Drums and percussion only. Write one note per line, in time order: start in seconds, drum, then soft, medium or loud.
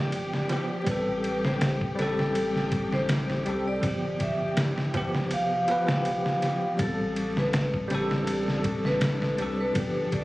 0.12 ride medium
0.33 snare medium
0.49 snare soft
0.49 ride medium
0.87 kick loud
0.87 ride medium
1.24 ride medium
1.45 snare medium
1.61 snare loud
1.61 ride medium
1.81 kick loud
1.99 snare soft
1.99 ride medium
2.19 snare medium
2.35 ride medium
2.56 snare soft
2.72 kick medium
2.72 ride medium
2.92 snare soft
3.09 snare loud
3.09 ride medium
3.30 snare medium
3.46 ride medium
3.83 kick loud
3.83 ride medium
4.20 kick medium
4.20 ride medium
4.57 snare loud
4.57 ride medium
4.78 snare medium
4.94 kick loud
4.94 ride medium
5.15 snare medium
5.31 ride medium
5.68 ride medium
5.88 snare loud
6.05 ride medium
6.26 snare soft
6.42 snare soft
6.42 ride medium
6.79 kick loud
6.79 ride medium
7.16 ride medium
7.37 snare medium
7.53 snare loud
7.53 ride medium
7.74 kick loud
7.90 snare soft
7.90 ride medium
8.11 snare medium
8.27 ride medium
8.48 snare soft
8.64 kick loud
8.64 ride medium
8.85 snare soft
9.01 snare loud
9.01 ride medium
9.22 snare medium
9.38 ride medium
9.75 kick loud
9.75 ride medium
10.12 kick medium
10.12 ride medium